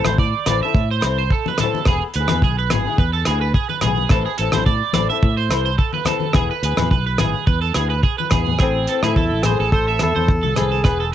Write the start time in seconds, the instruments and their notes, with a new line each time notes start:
0.04 fingered electric bass A1, nylon-string guitar E4 A4, clean electric guitar C5, cross-stick, high conga, low conga, low agogo
0.09 nylon-string guitar C4
0.18 fingered electric bass A2, clean electric guitar D5, kick
0.46 fingered electric bass A1, nylon-string guitar E3 C4 E4, clean electric guitar D5, cross-stick, closed hi-hat, high conga, low conga, low agogo
0.51 nylon-string guitar A4
0.63 nylon-string guitar E4 A4, clean electric guitar E5
0.67 nylon-string guitar C4
0.75 fingered electric bass A2, kick
0.91 clean electric guitar C5
1.01 fingered electric bass C2, nylon-string guitar E3, cross-stick, closed hi-hat, low agogo
1.06 nylon-string guitar C4 E4 A4
1.18 clean electric guitar C5
1.30 clean electric guitar A4, kick
1.46 clean electric guitar B4, high conga
1.58 nylon-string guitar E3, clean electric guitar A4, cross-stick, closed hi-hat, high conga, low conga, low agogo
1.62 nylon-string guitar C4 E4 A4
1.75 high conga
1.85 fingered electric bass E1, nylon-string guitar B3 G#4, clean electric guitar G#4, muted nylon-string guitar stroke, kick, cross-stick, low agogo
2.14 fingered electric bass D2, nylon-string guitar B3, clean electric guitar B4, closed hi-hat
2.19 nylon-string guitar E4 G#4
2.28 fingered electric bass E2, nylon-string guitar G#4, cross-stick, high conga, low conga, low agogo
2.34 nylon-string guitar E4
2.42 fingered electric bass B1, clean electric guitar G#4, kick
2.58 clean electric guitar B4
2.70 fingered electric bass G#1, nylon-string guitar B3 E4, clean electric guitar G#4, cross-stick, closed hi-hat, high conga, low conga, low agogo
2.74 nylon-string guitar G#4
2.87 nylon-string guitar E4 G#4
2.98 fingered electric bass E2, clean electric guitar B4, kick
3.13 clean electric guitar A4
3.25 fingered electric bass D2, nylon-string guitar B3, clean electric guitar G#4, cross-stick, closed hi-hat, low agogo
3.30 nylon-string guitar E4 G#4
3.41 clean electric guitar B4
3.54 clean electric guitar G#4, kick
3.69 clean electric guitar B4, high conga
3.81 fingered electric bass B1, nylon-string guitar B3, clean electric guitar G#4, cross-stick, closed hi-hat, high conga, low conga, low agogo
3.86 nylon-string guitar E4 G#4
3.98 high conga
4.09 fingered electric bass A1, nylon-string guitar E3 C4 E4 A4, clean electric guitar A4, kick, cross-stick, low agogo
4.26 clean electric guitar G#4
4.38 fingered electric bass A1, nylon-string guitar E3 C4 E4, clean electric guitar A4, closed hi-hat
4.43 nylon-string guitar A4
4.52 fingered electric bass A1, nylon-string guitar C4 E4 A4, clean electric guitar C5, cross-stick, high conga, low conga, low agogo
4.66 fingered electric bass A2, clean electric guitar D5, kick
4.93 fingered electric bass A1, nylon-string guitar E3 C4 E4, clean electric guitar D5, cross-stick, closed hi-hat, high conga, low conga, low agogo
4.97 nylon-string guitar A4
5.10 nylon-string guitar E4 A4, clean electric guitar E5
5.14 nylon-string guitar C4
5.23 fingered electric bass A2, kick
5.37 clean electric guitar C5
5.49 fingered electric bass C2, nylon-string guitar E3 C4 E4, cross-stick, closed hi-hat, low agogo
5.54 nylon-string guitar A4
5.66 clean electric guitar C5
5.78 clean electric guitar A4, kick
5.93 clean electric guitar B4, high conga
6.05 nylon-string guitar E3 C4 E4 A4, clean electric guitar A4, cross-stick, closed hi-hat, high conga, low conga, low agogo
6.20 high conga
6.33 fingered electric bass E1, nylon-string guitar B3 E4 G#4, clean electric guitar G#4, kick, cross-stick, low agogo
6.51 clean electric guitar B4
6.62 fingered electric bass D2, nylon-string guitar B3 E4 G#4, clean electric guitar B4, closed hi-hat
6.77 fingered electric bass E2, nylon-string guitar G#4, cross-stick, high conga, low conga, low agogo
6.81 nylon-string guitar E4
6.91 fingered electric bass B1, clean electric guitar B4, kick
7.06 clean electric guitar B4
7.18 fingered electric bass G#1, nylon-string guitar B3 E4 G#4, clean electric guitar G#4, cross-stick, closed hi-hat, high conga, low conga, low agogo
7.36 muted nylon-string guitar stroke
7.47 fingered electric bass E2, clean electric guitar B4, kick
7.61 clean electric guitar A4
7.74 fingered electric bass D2, nylon-string guitar B3 E4 G#4, clean electric guitar G#4, cross-stick, closed hi-hat, low agogo
7.90 clean electric guitar B4
8.03 clean electric guitar G#4, kick
8.18 clean electric guitar B4, high conga
8.30 fingered electric bass E2, nylon-string guitar B3 E4, clean electric guitar G#4, kick, cross-stick, closed hi-hat, low conga, low agogo
8.35 nylon-string guitar G#4
8.47 low conga
8.59 fingered electric bass A1, alto saxophone C4, nylon-string guitar C4 E4, clean electric guitar G#4, muted nylon-string guitar stroke, kick, cross-stick, low agogo
8.63 nylon-string guitar A4
8.87 nylon-string guitar E3, clean electric guitar A4, closed hi-hat
8.91 nylon-string guitar C4 E4 A4
9.03 fingered electric bass A2, alto saxophone E4, clean electric guitar G#4, nylon-string guitar A4, cross-stick, high conga, low agogo
9.07 nylon-string guitar C4 E4
9.16 fingered electric bass E2, clean electric guitar A4, kick, low conga
9.32 fingered electric bass A1
9.43 alto saxophone G#4, clean electric guitar C5, cross-stick, closed hi-hat, low conga, low agogo
9.47 nylon-string guitar E3 C4 E4 A4
9.60 fingered electric bass A1, clean electric guitar A4
9.72 alto saxophone A4, clean electric guitar C5, kick
9.88 nylon-string guitar C4 E4 A4, clean electric guitar E5
9.99 fingered electric bass E2, alto saxophone A4, cross-stick, closed hi-hat, high conga, low agogo
10.16 fingered electric bass E2, nylon-string guitar E4 A4, clean electric guitar C5
10.20 nylon-string guitar C4
10.28 kick
10.43 fingered electric bass C2, clean electric guitar A4, high conga
10.55 nylon-string guitar E3 C4, alto saxophone G#4, cross-stick, closed hi-hat, high conga, low conga, low agogo
10.60 muted nylon-string guitar stroke
10.72 clean electric guitar A4
10.84 fingered electric bass E1, nylon-string guitar B3, clean electric guitar B4, muted nylon-string guitar stroke, kick, cross-stick, low agogo
10.89 nylon-string guitar G#4
11.00 clean electric guitar A4